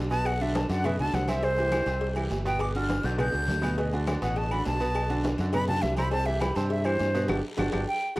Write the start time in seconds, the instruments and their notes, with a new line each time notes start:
Already playing: fingered electric bass B1
0.10 grand piano B2 B3 B4, flute A5, high conga, short guiro
0.25 flute F#5, cowbell, high conga, low agogo, long guiro, claves
0.41 grand piano D3 D4 F#4, flute E5, high conga, low agogo
0.55 flute A5, cowbell, high conga, low timbale, low agogo, short guiro
0.69 fingered electric bass F#2, grand piano D3 D4 F#4, flute F#5, cowbell, high conga, short guiro
0.84 grand piano B2 B3 B4, flute E5, cowbell, high conga, low conga, low agogo, long guiro, claves
0.99 fingered electric bass C#2, grand piano D3 D4 F#4, flute A5, high conga, low conga, low agogo
1.13 fingered electric bass C2, flute F#5, cowbell, high conga, low timbale, short guiro
1.28 grand piano C3 C4 C5, flute E5, cowbell, high conga, low agogo, short guiro, claves
1.43 grand piano C3 C4 C5, flute C5, cowbell, high conga, low agogo, long guiro
1.57 grand piano E3 E4 G4, high conga, low agogo
1.72 grand piano E3 E4 G4, cowbell, high conga, low timbale, low agogo, short guiro, claves
1.86 fingered electric bass C2, grand piano C3 C4 C5, cowbell, high conga, low agogo, short guiro
2.01 cowbell, high conga, long guiro
2.16 grand piano E3 E4 G4, high conga, low agogo, claves
2.30 fingered electric bass G1, cowbell, high conga, low timbale, low agogo, short guiro
2.45 grand piano B2 B3 B4, flute G5, high conga, short guiro
2.59 flute D6, cowbell, high conga, low agogo, long guiro, claves
2.75 grand piano D3 D4 F#4, flute F6, high conga, low agogo
2.89 cowbell, high conga, low timbale, low agogo, short guiro
3.03 fingered electric bass B1, grand piano D3 D4 F#4, flute G6, cowbell, short guiro
3.18 grand piano B2 B3 B4, flute G6, cowbell, high conga, low conga, low agogo, long guiro, claves
3.32 fingered electric bass C#2, grand piano D3 D4 F#4, high conga, low agogo
3.48 fingered electric bass D2, cowbell, high conga, low timbale, short guiro
3.62 grand piano B2 B3 B4, cowbell, high conga, low agogo, short guiro, claves
3.78 grand piano B2 B3 B4, cowbell, low agogo, long guiro
3.93 grand piano D3 D4 F#4, high conga, low agogo
4.07 grand piano D3 D4 F#4, cowbell, high conga, low timbale, low agogo, short guiro, claves
4.22 fingered electric bass A1, grand piano B2 B3 B4, flute F#5, cowbell, high conga, low agogo, short guiro
4.36 flute A5, cowbell, high conga, long guiro
4.51 grand piano D3 D4 F#4, flute B5, high conga, low agogo, claves
4.65 fingered electric bass B1, flute A5, cowbell, high conga, low timbale, low agogo, short guiro
4.80 grand piano B2 B3 B4, high conga, short guiro
4.95 cowbell, high conga, low agogo, long guiro, claves
5.10 grand piano D3 D4 F#4, high conga, low agogo
5.24 cowbell, high conga, low timbale, low agogo, short guiro
5.38 fingered electric bass F#2, grand piano D3 D4 F#4, cowbell, high conga, short guiro
5.53 grand piano B2 B3 B4, flute B5, cowbell, high conga, low conga, low agogo, long guiro, claves
5.68 grand piano D3 D4 F#4, flute A5, high conga, low conga, low agogo
5.82 fingered electric bass C2, flute E5, cowbell, high conga, low timbale, short guiro
5.97 grand piano C3 C4 C5, flute B5, cowbell, high conga, low agogo, short guiro, claves
6.11 grand piano C3 C4 C5, flute A5, cowbell, high conga, low agogo, long guiro
6.26 grand piano E3 E4 G4, flute E5, high conga, low agogo
6.41 grand piano E3 E4 G4, flute B5, cowbell, high conga, low timbale, low agogo, short guiro, claves
6.55 fingered electric bass G2, grand piano C3 C4 C5, flute A5, cowbell, high conga, low agogo, short guiro
6.70 flute E5, cowbell, high conga, long guiro
6.85 grand piano E3 E4 G4, flute C5, high conga, low agogo, claves
6.99 fingered electric bass G2, cowbell, high conga, low timbale, low agogo, short guiro
7.14 grand piano B2 B3 B4, high conga, short guiro
7.28 fingered electric bass G1, grand piano D4 F#4 G4, cowbell, high conga, high timbale, long guiro, claves
7.57 fingered electric bass G1, grand piano D4 F#4 G4, cowbell, high conga, high timbale, long guiro, claves
7.72 fingered electric bass G1, grand piano D4 F#4 G4, cowbell, high conga, high timbale, long guiro, claves
7.88 flute G5
8.16 grand piano D4 F#4 G4, cowbell